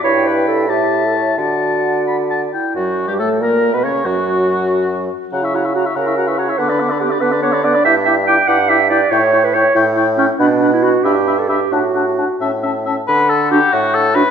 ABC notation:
X:1
M:6/8
L:1/16
Q:3/8=93
K:D
V:1 name="Flute"
g6 e6 | f8- f z3 | [K:Bm] F3 G A2 ^A3 B c2 | F8- F2 z2 |
^a c' a c' a c' a c' a c' a c' | d' b d' b d' b d' b d' b d' b | [K:D] d'2 d'2 d'2 d'2 d'2 d'2 | c'2 c'2 c'2 c'2 c'2 c'2 |
b2 b2 b2 b2 b2 b2 | a2 a2 a2 a2 a2 a2 | f12 |]
V:2 name="Oboe"
b6 a6 | a6 b2 a2 g2 | [K:Bm] F3 G A2 ^A3 B c2 | F8- F2 z2 |
f e f e f e f e f e f e | f d f d f d f d f d f d | [K:D] g2 g2 g2 g2 g2 g2 | g2 g2 g2 g2 g2 g2 |
f2 f2 f2 e2 e2 e2 | f2 f2 f2 e2 e2 e2 | B2 A2 G2 F2 A2 B2 |]
V:3 name="Clarinet"
c2 B2 A2 G3 A c2 | d8- d2 E2 | [K:Bm] F3 G A2 ^A3 B c2 | F8- F2 z2 |
z2 E2 F2 ^A3 B c2 | B3 A G2 B2 c2 d2 | [K:D] e2 e2 g2 f2 e2 d2 | c3 B c2 z4 C2 |
D3 E F2 G3 A G2 | F6 z6 | z4 F z4 z F z |]
V:4 name="French horn"
E6 E6 | F8- F2 z2 | [K:Bm] F,3 G, A,2 ^A,3 B, C2 | F,8- F,2 z2 |
F E F E F E F E F E F E | B, D B, D B, D B, D B, D B, D | [K:D] E2 E2 E2 E2 E2 E2 | E2 E2 E2 E2 E2 E2 |
D2 D2 D2 D2 D2 D2 | D2 D2 D2 C2 C2 C2 | z4 D z4 z D z |]
V:5 name="Bassoon" clef=bass
G,,6 A,,6 | D,8- D,2 z2 | [K:Bm] F,,3 G,, A,,2 ^A,,3 B,, C,2 | F,,8- F,,2 z2 |
C,6 C,6 | D,6 D,6 | [K:D] G,,6 G,,6 | A,,6 A,,6 |
B,,6 G,,6 | A,,6 A,,6 | D,6 A,,6 |]